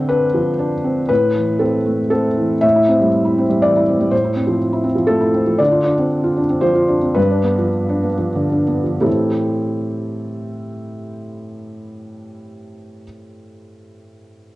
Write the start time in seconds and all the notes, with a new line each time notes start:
Already playing: D3 C4 C5
0.09 D4 B4
0.34 F3
0.59 D4
0.84 C4
1.09 A2 B4
1.36 E3
1.59 C4 A4
1.86 A3
2.10 C4 A4
2.37 E3
2.61 A2 E5
2.76 E4
2.88 C4
3.00 G3
3.25 E4
3.38 C4
3.49 G3
3.62 E3 D5
3.76 E4
3.88 C4
4.00 G3
4.11 A2 C5
4.24 E4
4.36 C4
4.47 F3
4.73 E4
4.84 C4
4.95 F3
5.07 A3 A4
5.20 E4
5.34 C4
5.47 F3
5.58 D3 D5
5.72 F4
5.84 D4
5.98 C4
6.24 F4
6.37 D4
6.49 C4
6.61 F3 C5
6.75 F4
6.88 D4
7.02 C4
7.15 G2 B4
7.31 D4
7.44 B3
7.59 F3
7.89 D4
8.03 B3
8.18 F3
8.36 D3
8.52 D4
8.68 B3
8.84 F3
9.01 A2 E3 C4 E4 G4 A4